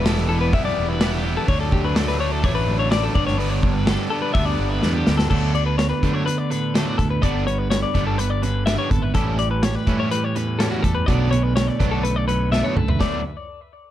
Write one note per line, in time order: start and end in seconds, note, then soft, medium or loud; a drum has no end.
0.00 0.53 E1 loud
0.05 0.51 E3 medium
0.05 0.31 G3 medium
0.05 0.29 B3 medium
0.05 0.28 E4 medium
0.05 0.28 A4 medium
0.05 snare loud
0.05 open hi-hat medium
0.18 snare soft
0.29 0.52 G3 medium
0.29 0.53 B3 medium
0.29 0.54 E4 medium
0.29 0.40 A4 medium
0.41 0.53 B4 medium
0.53 0.73 B1 loud
0.53 0.99 E3 medium
0.53 1.00 G3 medium
0.53 1.01 B3 medium
0.53 1.02 E4 medium
0.53 0.65 E5 medium
0.53 kick loud
0.53 open hi-hat medium
0.65 0.89 D5 medium
0.78 1.37 E1 medium
0.89 1.12 B4 medium
1.00 1.46 E3 medium
1.00 1.25 G3 loud
1.00 1.24 B3 loud
1.00 1.22 E4 loud
1.00 snare loud
1.00 open hi-hat medium
1.12 1.36 G4 medium
1.23 1.48 G3 medium
1.23 1.47 B3 medium
1.23 1.46 E4 medium
1.37 1.48 A4 medium
1.47 2.46 D2 loud
1.47 1.94 D3 medium
1.47 1.96 F#3 loud
1.47 1.96 A3 loud
1.47 1.97 D4 loud
1.47 1.60 C#5 loud
1.47 kick loud
1.47 open hi-hat medium
1.61 1.72 A4 medium
1.72 1.84 G4 medium
1.72 kick medium
1.85 1.96 B4 medium
1.95 2.41 D3 medium
1.95 2.21 F#3 medium
1.95 2.19 A3 medium
1.95 2.18 D4 medium
1.95 2.08 A4 medium
1.95 snare loud
1.95 open hi-hat medium
2.08 2.20 B4 medium
2.08 snare soft
2.18 2.43 F#3 medium
2.18 2.43 A3 medium
2.18 2.44 D4 medium
2.18 2.32 C#5 medium
2.32 2.44 A4 medium
2.42 2.64 A1 medium
2.42 2.89 D3 medium
2.42 2.90 F#3 medium
2.42 2.90 A3 medium
2.42 2.92 D4 medium
2.42 2.55 C#5 medium
2.42 kick loud
2.42 open hi-hat medium
2.55 2.79 B4 medium
2.68 3.08 A1 medium
2.79 2.91 C#5 medium
2.90 3.13 D3 loud
2.90 3.15 F#3 loud
2.90 3.14 A3 loud
2.90 3.14 D4 loud
2.90 3.03 D5 medium
2.90 snare loud
2.90 open hi-hat medium
3.03 3.15 A4 medium
3.14 3.96 G1 medium
3.14 3.37 G2 medium
3.14 3.38 D3 medium
3.14 3.38 G3 medium
3.14 3.39 B3 medium
3.14 3.39 D4 medium
3.14 3.26 D5 medium
3.14 kick loud
3.26 3.38 C#5 medium
3.26 snare soft
3.38 4.10 G2 medium
3.38 3.84 D3 loud
3.38 3.85 G3 loud
3.38 3.86 B3 loud
3.38 3.87 D4 loud
3.38 3.50 B4 loud
3.38 open hi-hat medium
3.50 3.74 C#5 medium
3.63 kick medium
3.74 3.86 B4 medium
3.86 4.32 D3 medium
3.86 4.11 G3 medium
3.86 4.10 B3 medium
3.86 4.09 D4 medium
3.86 4.09 A4 medium
3.86 snare loud
3.86 open hi-hat medium
4.10 4.33 G3 medium
4.10 4.34 B3 medium
4.10 4.35 D4 medium
4.10 4.21 A4 medium
4.22 4.33 B4 medium
4.33 4.55 D2 medium
4.33 4.81 D3 medium
4.33 4.81 G3 medium
4.33 4.82 B3 medium
4.33 4.82 D4 medium
4.33 4.45 E5 medium
4.33 kick loud
4.33 open hi-hat medium
4.45 4.69 D5 medium
4.59 4.79 G1 medium
4.69 4.93 B4 medium
4.81 5.05 E2 medium
4.81 5.29 G2 medium
4.81 5.28 D3 loud
4.81 5.07 G3 loud
4.81 5.06 B3 loud
4.81 5.04 D4 loud
4.81 snare medium
4.93 5.17 G4 medium
5.05 5.29 D2 medium
5.05 5.30 G3 medium
5.05 5.29 B3 medium
5.05 5.29 D4 medium
5.05 snare loud
5.18 5.29 A4 medium
5.18 snare loud
5.30 5.91 D2 loud
5.30 7.21 D2 medium
5.30 5.54 D3 medium
5.30 6.02 D3 medium
5.30 5.54 F#3 medium
5.30 5.53 A3 medium
5.30 5.79 B3 medium
5.30 5.53 D4 medium
5.30 5.56 D4 medium
5.30 5.54 A4 medium
5.30 kick loud
5.30 crash loud
5.34 7.22 F#4 medium
5.54 6.03 D4 medium
5.54 5.66 D5 medium
5.54 muted overdriven electric guitar stroke soft
5.54 closed hi-hat medium
5.66 5.78 B4 medium
5.78 6.27 B3 medium
5.78 5.89 C#5 medium
5.78 muted overdriven electric guitar stroke soft
5.78 snare loud
5.78 closed hi-hat medium
5.89 6.14 B4 medium
6.03 7.21 D3 medium
6.03 6.83 D3 medium
6.03 6.26 D3 medium
6.03 6.26 F#3 medium
6.03 6.27 A3 medium
6.03 6.27 D4 medium
6.03 6.50 D4 medium
6.03 kick medium
6.03 closed hi-hat medium
6.14 6.25 C#5 medium
6.26 6.99 B3 medium
6.26 6.38 B4 medium
6.26 muted overdriven electric guitar stroke soft
6.26 closed hi-hat medium
6.38 6.50 D5 medium
6.50 7.23 A2 medium
6.50 7.20 D4 medium
6.50 6.74 B4 medium
6.50 muted overdriven electric guitar stroke soft
6.50 closed hi-hat medium
6.74 6.99 D3 medium
6.74 6.98 F#3 loud
6.74 6.97 A3 medium
6.74 6.97 D4 medium
6.74 6.86 A4 medium
6.74 snare loud
6.74 closed hi-hat medium
6.86 6.98 F#4 medium
6.98 7.19 D2 medium
6.98 7.23 B3 medium
6.98 7.10 A4 medium
6.98 muted overdriven electric guitar stroke soft
6.98 kick medium
6.98 snare soft
6.98 closed hi-hat medium
7.10 7.22 B4 medium
7.21 7.83 G1 medium
7.21 9.12 G2 medium
7.21 7.46 D3 medium
7.21 7.94 D3 medium
7.21 7.46 G3 medium
7.21 7.46 B3 medium
7.21 7.71 B3 medium
7.21 7.47 C#4 soft
7.21 7.45 D4 medium
7.21 9.13 F#4 medium
7.21 7.46 D5 medium
7.21 kick loud
7.21 closed hi-hat medium
7.47 7.96 C#4 medium
7.47 7.58 C#5 medium
7.47 muted overdriven electric guitar stroke soft
7.47 closed hi-hat medium
7.58 7.70 B4 medium
7.70 8.20 B3 medium
7.70 7.82 C#5 medium
7.70 muted overdriven electric guitar stroke soft
7.70 snare loud
7.70 closed hi-hat medium
7.83 8.06 D5 medium
7.94 8.76 G1 loud
7.94 8.43 D3 medium
7.94 8.18 D3 medium
7.94 8.18 G3 medium
7.94 8.18 B3 medium
7.94 8.44 C#4 medium
7.94 8.18 D4 medium
7.94 kick medium
7.94 closed hi-hat medium
8.07 8.18 A4 medium
8.18 8.91 B3 medium
8.18 8.30 B4 medium
8.18 muted overdriven electric guitar stroke soft
8.18 closed hi-hat medium
8.30 8.42 D5 medium
8.42 9.13 D3 medium
8.42 9.17 C#4 medium
8.42 8.65 B4 medium
8.42 muted overdriven electric guitar stroke medium
8.42 closed hi-hat medium
8.66 8.90 D3 medium
8.66 8.90 G3 medium
8.66 8.90 B3 loud
8.66 8.89 D4 loud
8.66 8.78 E5 medium
8.66 snare loud
8.66 closed hi-hat loud
8.78 8.90 C#5 medium
8.90 9.11 G#1 loud
8.90 9.16 B3 medium
8.90 9.02 A4 medium
8.90 muted overdriven electric guitar stroke soft
8.90 kick medium
8.90 closed hi-hat medium
9.02 9.14 B4 medium
9.14 9.75 A1 loud
9.14 11.06 A2 medium
9.14 9.38 E3 medium
9.14 9.87 E3 medium
9.14 9.38 G3 medium
9.14 9.63 G3 medium
9.14 9.38 C#4 medium
9.14 9.39 C#4 medium
9.14 9.37 E4 medium
9.14 9.38 A4 medium
9.14 kick loud
9.14 closed hi-hat loud
9.18 11.06 G4 medium
9.38 9.88 C#4 medium
9.38 9.50 D5 medium
9.38 muted overdriven electric guitar stroke soft
9.38 closed hi-hat medium
9.51 9.63 B4 medium
9.63 10.11 G3 medium
9.63 9.75 C#5 medium
9.63 muted overdriven electric guitar stroke soft
9.63 snare loud
9.63 closed hi-hat loud
9.75 9.99 B4 medium
9.87 10.68 A2 medium
9.87 11.05 E3 medium
9.87 10.10 E3 medium
9.87 10.10 G3 medium
9.87 10.11 C#4 loud
9.87 10.35 C#4 medium
9.87 10.11 E4 medium
9.87 kick medium
9.87 closed hi-hat medium
10.00 10.11 C#5 medium
10.11 10.83 G3 medium
10.11 10.24 B4 medium
10.11 muted overdriven electric guitar stroke soft
10.11 closed hi-hat medium
10.24 10.35 C#5 medium
10.35 11.05 E2 medium
10.35 11.05 C#4 medium
10.35 10.60 B4 medium
10.35 muted overdriven electric guitar stroke medium
10.35 closed hi-hat medium
10.59 10.83 E3 medium
10.59 10.83 G3 medium
10.59 10.82 C#4 loud
10.59 10.83 E4 medium
10.59 10.70 A4 medium
10.59 snare loud
10.59 closed hi-hat medium
10.71 10.83 F#4 medium
10.83 11.04 E2 medium
10.83 11.08 G3 medium
10.83 10.95 A4 medium
10.83 muted overdriven electric guitar stroke soft
10.83 kick medium
10.83 snare soft
10.83 closed hi-hat medium
10.95 11.06 B4 medium
11.06 11.69 B1 medium
11.06 11.79 B2 medium
11.06 11.32 B2 medium
11.06 11.78 D3 medium
11.06 11.32 F#3 medium
11.06 11.55 A3 medium
11.06 11.31 B3 medium
11.06 11.31 C#4 medium
11.06 11.31 D4 medium
11.06 13.01 D4 medium
11.06 11.30 D5 medium
11.06 kick loud
11.06 closed hi-hat medium
11.31 11.79 C#4 medium
11.31 11.43 C#5 medium
11.31 muted overdriven electric guitar stroke medium
11.31 closed hi-hat medium
11.43 11.55 B4 medium
11.56 12.03 A3 medium
11.56 11.67 C#5 medium
11.56 muted overdriven electric guitar stroke soft
11.56 snare loud
11.56 closed hi-hat medium
11.67 11.92 D5 medium
11.79 12.61 B1 loud
11.79 12.03 B2 medium
11.79 13.00 D3 medium
11.79 12.03 F#3 medium
11.79 12.03 B3 medium
11.79 12.27 C#4 medium
11.79 12.04 D4 medium
11.79 kick medium
11.79 closed hi-hat medium
11.91 12.04 A4 medium
12.03 12.75 A3 medium
12.03 12.16 B4 medium
12.03 muted overdriven electric guitar stroke soft
12.03 closed hi-hat medium
12.16 12.27 D5 medium
12.28 12.98 F#2 medium
12.28 12.98 C#4 medium
12.28 12.52 B4 medium
12.28 muted overdriven electric guitar stroke soft
12.28 closed hi-hat medium
12.52 12.76 B2 medium
12.52 12.76 F#3 medium
12.52 12.76 B3 loud
12.52 12.75 D4 loud
12.52 12.64 E5 medium
12.52 snare medium
12.64 12.76 C#5 medium
12.76 12.97 C#2 loud
12.76 12.97 A3 medium
12.76 12.89 A4 medium
12.76 muted overdriven electric guitar stroke medium
12.76 mid tom medium
12.88 13.01 B4 medium
12.88 floor tom medium
13.00 13.22 D2 medium
13.00 13.23 D2 medium
13.00 13.20 D3 medium
13.00 13.22 D3 medium
13.00 13.20 F#3 medium
13.00 13.20 A3 loud
13.00 13.23 B3 medium
13.00 13.20 D4 loud
13.00 13.23 D4 medium
13.00 13.23 F#4 medium
13.00 13.23 D5 medium
13.00 kick medium
13.00 snare medium